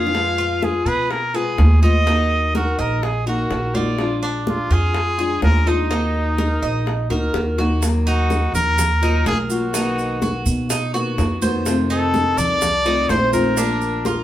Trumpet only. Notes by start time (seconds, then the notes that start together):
Already playing: F5
0.63 G#4
0.87 B4
1.11 A#4
1.35 G#4
1.83 D#5
2.56 F#4
2.80 A#4
3.03 G#4
3.27 F#4
3.75 D5
4.48 F4
4.73 G#4
5.43 A#4
5.68 D#4
8.07 F#4
8.55 A#4
9.27 G#4
9.52 F#4
11.91 A4
12.38 D5
13.10 C5
13.33 A#4